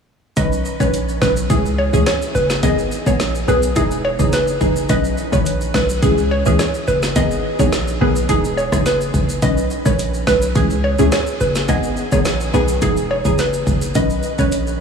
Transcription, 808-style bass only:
0.37 0.63 B1 loud
0.80 1.18 A#1 medium
1.22 1.48 B1 medium
1.50 1.90 C#2 loud
1.93 2.05 C#2 loud
2.35 2.61 F#1 medium
2.63 2.89 G#1 loud
3.06 3.45 A#1 medium
3.48 3.74 B1 medium
3.76 4.16 E1 loud
4.19 4.58 F#1 medium
4.61 4.87 F#1 loud
4.89 5.16 B1 loud
5.33 5.71 A#1 medium
5.74 6.00 B1 loud
6.03 6.42 C#2 loud
6.46 6.58 C#2 loud
6.88 7.14 F#1 medium
7.16 7.42 G#1 loud
7.59 7.98 A#1 medium
8.01 8.27 B1 medium
8.29 8.69 E1 loud
8.72 9.11 F#1 loud
9.14 9.40 F#1 loud
9.42 9.68 B1 loud
9.86 10.24 A#1 medium
10.27 10.53 B1 loud
10.55 10.95 C#2 loud
10.99 11.11 C#2 loud
11.41 11.67 F#1 loud
11.69 11.95 G#1 loud
12.12 12.50 A#1 medium
12.54 12.80 B1 medium
12.82 13.22 E1 loud
13.25 13.63 F#1 loud
13.67 13.93 F#1 loud
13.95 14.21 B1 loud
14.39 14.77 A#1 medium

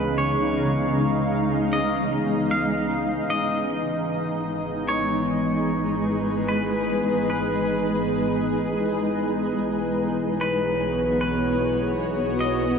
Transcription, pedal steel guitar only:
0.00 0.18 B4 medium
0.18 1.79 C#5 medium
1.73 2.51 D#5 medium
2.51 3.30 F5 medium
3.30 4.93 D#5 medium
4.88 6.51 C#5 medium
6.49 7.29 B4 medium
7.30 9.21 B4 medium
10.41 11.20 B4 loud
11.21 11.96 B4 loud
12.40 12.79 D#5 medium

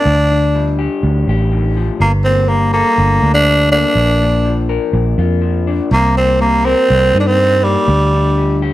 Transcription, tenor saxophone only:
0.00 0.75 D4 medium
2.01 2.12 A#3 medium
2.24 2.50 C4 medium
2.49 2.73 A#3 medium
2.73 3.31 A#3 medium
3.34 3.69 D4 medium
3.72 4.66 D4 medium
5.93 6.15 A#3 medium
6.17 6.40 C4 medium
6.41 6.67 A#3 medium
6.65 7.20 C4 loud
7.20 7.28 D4 medium
7.27 7.65 C4 loud
7.64 8.61 G3 medium

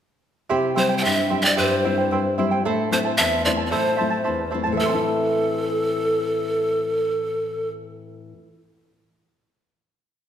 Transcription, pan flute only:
0.78 0.96 C5 medium
0.98 1.06 G5 medium
1.05 1.41 E5 medium
1.42 1.57 D5 medium
1.42 1.46 E5 soft
1.58 2.34 C5 medium
2.93 2.99 C5 medium
3.18 3.43 E5 medium
3.45 3.51 D5 medium
3.67 3.73 D5 soft
3.71 4.52 C5 medium
4.80 7.69 A4 medium

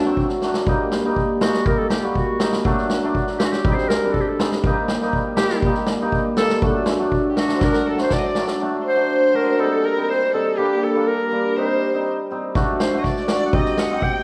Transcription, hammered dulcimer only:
0.05 0.42 F#3 medium
0.05 0.24 A3 medium
0.05 0.24 C4 medium
0.43 0.72 F#3 medium
0.43 0.55 A3 medium
0.43 0.55 D4 medium
0.67 1.03 G3 medium
0.67 0.86 A#3 medium
0.67 0.86 D#4 loud
1.04 1.40 G3 medium
1.04 1.23 A#3 medium
1.04 1.23 D#4 medium
1.41 1.65 G3 medium
1.41 1.54 A#3 medium
1.41 1.54 D#4 medium
1.67 2.02 G3 medium
1.67 1.85 A#3 medium
1.67 1.85 D#4 medium
2.03 2.39 G3 medium
2.03 2.22 A#3 medium
2.03 2.22 F#4 medium
2.40 2.70 G3 medium
2.40 2.53 A#3 medium
2.40 2.53 D#4 medium
2.65 3.02 F#3 loud
2.65 2.84 A3 medium
2.65 2.85 D4 loud
3.03 3.39 F#3 medium
3.03 3.22 A3 medium
3.03 3.22 D4 loud
3.40 3.69 F#3 medium
3.40 3.53 A3 medium
3.40 3.53 D4 medium
3.65 4.02 G3 medium
3.65 3.84 C4 medium
3.65 3.84 D#4 medium
4.03 4.39 G3 medium
4.03 4.21 C4 medium
4.03 4.22 D4 medium
4.40 4.64 G3 medium
4.40 4.53 C4 medium
4.40 4.53 D#4 medium
4.65 5.00 G3 loud
4.65 4.83 A#3 medium
4.65 4.84 D#4 loud
5.01 5.39 G3 medium
5.01 5.20 A#3 medium
5.01 5.21 D#4 loud
5.40 5.64 G3 medium
5.40 5.52 A#3 soft
5.40 5.52 D#4 medium
5.65 5.99 G3 medium
5.65 5.83 A#3 medium
5.65 5.83 D#4 medium
6.01 6.37 G3 medium
6.01 6.20 A#3 medium
6.01 6.20 D#4 loud
6.38 6.67 G3 medium
6.38 6.50 A#3 medium
6.38 6.51 D#4 medium
6.62 6.98 F#3 medium
6.62 6.81 A3 medium
6.62 6.82 D4 medium
6.99 7.35 F#3 medium
6.99 7.18 A3 medium
6.99 7.18 D4 medium
7.37 7.57 F#3 medium
7.37 7.49 A3 medium
7.37 7.50 D4 medium
7.59 7.96 F#3 medium
7.59 7.79 A3 medium
7.59 7.79 D4 medium
7.98 8.35 F#3 medium
7.98 8.17 A3 medium
7.98 8.17 D4 medium
8.36 8.60 F#3 medium
8.36 8.49 A3 medium
8.36 8.49 D4 medium
8.61 8.95 F#3 medium
8.61 8.79 A3 medium
8.61 8.80 D4 medium
8.96 9.32 F#3 medium
8.96 9.15 A3 medium
8.96 9.16 D4 medium
9.33 9.64 F#3 medium
9.33 9.47 A3 soft
9.33 9.47 D4 medium
9.59 9.95 G3 medium
9.59 9.78 C4 medium
9.59 9.78 D#4 medium
9.97 10.33 G3 medium
9.97 10.16 C4 medium
9.97 10.16 D#4 medium
10.34 10.57 G3 medium
10.34 10.46 C4 medium
10.34 10.46 D#4 medium
10.58 10.94 G3 medium
10.58 10.77 A#3 medium
10.58 10.77 D4 medium
10.95 11.31 G3 medium
10.95 11.14 A#3 medium
10.95 11.14 D4 medium
11.32 11.55 G3 medium
11.32 11.45 A#3 medium
11.32 11.45 D4 medium
11.56 11.92 G3 medium
11.56 11.76 C4 medium
11.56 11.76 D#4 medium
11.93 12.29 G3 medium
11.93 12.12 C4 medium
11.93 12.13 D#4 medium
12.31 12.60 G3 medium
12.31 12.43 C4 medium
12.31 12.43 D#4 medium
12.55 12.73 A3 medium
12.55 12.74 D4 medium
12.55 12.74 F#4 loud
12.93 13.11 A3 medium
12.93 13.11 D4 medium
12.93 13.11 F#4 medium
13.29 13.41 A3 medium
13.29 13.42 D4 medium
13.29 13.42 F#4 medium
13.53 13.72 C4 medium
13.53 13.72 D#4 medium
13.53 13.72 G4 medium
13.91 14.09 C4 medium
13.91 14.09 D#4 medium
13.91 14.10 G4 medium

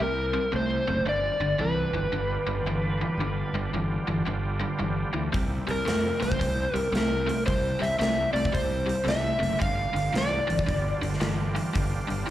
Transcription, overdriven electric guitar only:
0.00 0.31 C3 medium
0.00 0.31 G3 medium
0.33 0.51 C3 medium
0.33 0.51 G3 medium
0.52 0.83 C3 medium
0.52 0.84 A3 medium
0.87 1.05 C3 medium
0.87 1.05 A3 medium
1.06 1.37 G2 medium
1.06 1.37 D3 medium
1.41 1.58 G2 medium
1.41 1.58 D3 medium
1.59 1.90 G2 medium
1.59 1.91 E3 medium
1.93 2.11 G2 medium
1.93 2.12 E3 medium
2.12 2.44 G2 medium
2.12 2.44 D3 medium
2.47 2.64 G2 medium
2.47 2.64 D3 medium
2.66 2.97 G2 medium
2.66 2.98 E3 medium
3.01 3.18 G2 medium
3.01 3.18 E3 medium
3.20 3.51 G2 medium
3.20 3.51 D3 medium
3.54 3.72 G2 medium
3.54 3.72 D3 medium
3.74 4.04 G2 medium
3.74 4.04 E3 medium
4.07 4.24 G2 medium
4.07 4.25 E3 medium
4.26 4.57 G2 medium
4.26 4.58 D3 medium
4.60 4.78 G2 medium
4.60 4.78 D3 medium
4.79 5.10 G2 medium
4.79 5.11 E3 medium
5.13 5.31 G2 medium
5.13 5.31 E3 medium
5.33 5.64 C3 medium
5.33 5.64 G3 medium
5.67 5.84 C3 medium
5.67 5.85 G3 medium
5.85 6.17 C3 medium
5.85 6.17 A3 medium
6.20 6.38 C3 medium
6.20 6.38 A3 medium
6.39 6.71 C3 medium
6.39 6.71 G3 medium
6.74 6.91 C3 medium
6.74 6.92 G3 medium
6.92 7.24 C3 medium
6.92 7.24 A3 medium
7.26 7.45 C3 medium
7.26 7.45 A3 medium
7.46 7.78 C3 medium
7.46 7.78 G3 medium
7.79 7.98 C3 medium
7.79 7.98 G3 medium
7.99 8.31 C3 medium
7.99 8.31 A3 medium
8.33 8.51 C3 medium
8.33 8.52 A3 medium
8.53 8.84 C3 medium
8.53 8.84 G3 medium
8.86 9.03 C3 medium
8.86 9.05 G3 medium
9.05 9.37 C3 medium
9.05 9.37 A3 medium
9.39 9.58 C3 medium
9.39 9.58 A3 medium
9.59 9.91 G2 medium
9.59 9.91 D3 medium
9.93 10.12 G2 medium
9.93 10.12 D3 medium
10.13 10.45 G2 medium
10.13 10.45 E3 medium
10.47 10.65 G2 medium
10.47 10.66 E3 medium
10.66 10.98 G2 medium
10.66 10.98 D3 medium
11.02 11.19 G2 medium
11.02 11.19 D3 medium
11.20 11.52 G2 medium
11.20 11.52 E3 loud
11.55 11.72 G2 medium
11.55 11.73 E3 medium
11.73 12.05 G2 medium
11.73 12.06 D3 medium
12.08 12.25 G2 medium
12.08 12.26 D3 medium
12.27 12.30 G2 medium
12.27 12.30 E3 medium

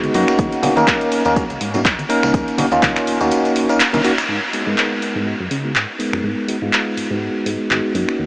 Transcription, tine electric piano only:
0.00 0.11 G#3 medium
0.00 0.12 B3 medium
0.00 0.12 D#4 medium
0.00 0.12 F#4 medium
0.14 0.60 A#3 medium
0.14 0.61 C#4 medium
0.14 0.61 D#4 medium
0.14 0.61 F#4 loud
0.63 0.73 A#3 medium
0.63 0.73 C#4 medium
0.63 0.74 D#4 medium
0.63 0.74 F#4 medium
0.76 1.22 A#3 medium
0.76 1.22 C#4 medium
0.76 1.22 D#4 medium
0.76 1.22 A#4 loud
1.25 1.34 A#3 medium
1.25 1.34 C#4 medium
1.25 1.34 D#4 medium
1.25 1.34 A#4 loud
1.36 1.43 A#3 medium
1.36 1.43 C#4 medium
1.36 1.43 D#4 medium
1.36 1.43 F#4 loud
1.74 1.80 A#3 medium
1.74 1.80 C#4 medium
1.74 1.80 D#4 medium
1.74 1.80 F#4 medium
2.09 2.56 A#3 medium
2.09 2.56 C#4 medium
2.09 2.56 D#4 medium
2.09 2.56 A#4 loud
2.58 2.65 A#3 medium
2.58 2.65 C#4 medium
2.58 2.65 D#4 medium
2.58 2.65 F#4 loud
2.72 3.17 A#3 medium
2.72 3.17 C#4 medium
2.72 3.18 D#4 medium
2.72 3.18 F4 loud
3.20 3.66 A#3 medium
3.20 3.67 C#4 medium
3.20 3.67 D#4 medium
3.20 3.67 F#4 medium
3.69 3.78 A#3 medium
3.69 3.78 C#4 medium
3.69 3.78 D#4 medium
3.69 3.78 A#4 loud
3.93 3.99 A#3 medium
3.93 3.99 C#4 medium
3.93 3.99 D#4 medium
3.93 3.99 A#4 medium
4.04 4.11 A#3 medium
4.04 4.11 C#4 medium
4.04 4.11 D#4 medium
4.04 4.11 F#4 medium
4.53 4.63 G#3 medium
4.53 4.64 B3 medium
4.53 4.64 D#4 medium
4.53 4.64 F#4 medium
4.66 5.12 G#3 medium
4.66 5.12 B3 medium
4.66 5.12 D#4 medium
4.66 5.13 A#4 loud
5.15 5.24 G#3 medium
5.15 5.24 B3 medium
5.15 5.24 D#4 medium
5.15 5.24 A#4 medium
5.26 5.33 G#3 medium
5.26 5.33 B3 medium
5.26 5.33 D#4 medium
5.26 5.33 F#4 medium
5.64 5.70 G#3 medium
5.64 5.70 B3 medium
5.64 5.70 D#4 medium
5.64 5.70 F#4 medium
5.99 6.45 G#3 medium
5.99 6.46 B3 medium
5.99 6.46 D#4 medium
5.99 6.46 A#4 medium
6.48 6.55 G#3 medium
6.48 6.55 B3 medium
6.48 6.55 D#4 medium
6.48 6.55 F#4 medium
6.61 7.07 G#3 medium
6.61 7.08 B3 medium
6.61 7.08 D#4 medium
6.61 7.08 F4 loud
7.10 7.67 G#3 medium
7.10 7.68 B3 medium
7.10 7.68 D#4 medium
7.10 7.68 F#4 medium
7.70 7.92 G#3 medium
7.70 7.92 B3 medium
7.70 7.92 D#4 medium
7.70 7.92 F#4 medium
7.94 8.26 A#3 medium
7.94 8.26 C#4 medium
7.94 8.26 D#4 medium
7.94 8.26 F#4 medium

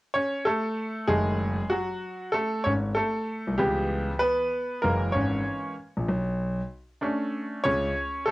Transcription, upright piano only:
0.14 0.44 C#4 medium
0.14 0.46 C#5 medium
0.45 1.05 A3 medium
0.45 1.10 A4 medium
1.08 1.52 D#3 soft
1.08 1.67 G#3 medium
1.08 1.53 A3 medium
1.08 1.72 G#4 medium
1.70 2.30 F#3 medium
1.70 2.35 F#4 medium
2.32 2.63 A3 medium
2.32 2.62 A4 medium
2.64 2.73 C#4 medium
2.64 2.71 C#5 medium
2.94 3.55 A3 medium
2.94 3.59 A4 medium
3.58 4.48 E3 medium
3.58 4.18 G3 medium
3.58 4.20 B3 medium
3.58 4.22 G4 medium
4.19 4.80 B3 medium
4.19 4.84 B4 medium
4.82 5.73 E3 medium
4.82 5.73 G#3 soft
4.82 5.74 A#3 medium
4.82 5.12 A#4 medium
5.12 5.73 C#4 medium
5.12 5.72 C#5 medium
7.01 7.92 A3 medium
7.01 7.63 C#4 medium
7.01 7.91 D4 medium
7.64 8.23 C#4 medium
7.64 8.28 C#5 loud
8.25 8.31 A3 medium
8.25 8.31 A4 medium

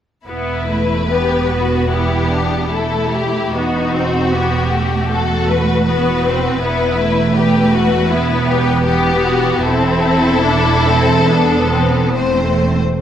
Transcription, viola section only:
0.28 0.67 B3 soft
0.70 1.11 A3 soft
1.11 1.90 B3 soft
1.91 2.70 B3 soft
2.72 3.52 A3 soft
3.54 3.93 B3 soft
3.94 4.33 C4 soft
4.33 4.72 B3 soft
4.73 5.88 A3 soft
5.88 6.25 B3 soft
6.25 6.62 C4 soft
6.62 6.98 B3 soft
6.99 8.12 A3 soft
8.12 8.87 B3 soft
8.88 9.64 B3 soft
9.67 10.45 C4 soft
10.44 10.84 D4 soft
10.86 11.27 C4 soft
11.30 12.15 B3 soft
12.15 12.84 A3 soft

